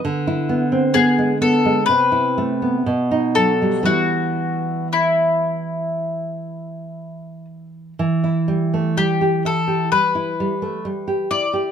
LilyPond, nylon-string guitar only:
\new Staff \with { instrumentName = "Nylon-string guitar" } { \time 4/4 \key e \minor \tempo 4 = 61 d16 e'16 b16 c'16 b16 gis16 b16 gis16 c16 e'16 a16 b16 b,16 dis'16 fis16 g16 | <e g e'>1 | e16 e'16 g16 a16 g16 g'16 e'16 g'16 g16 e'16 g16 a16 g16 g'16 e'16 g'16 | }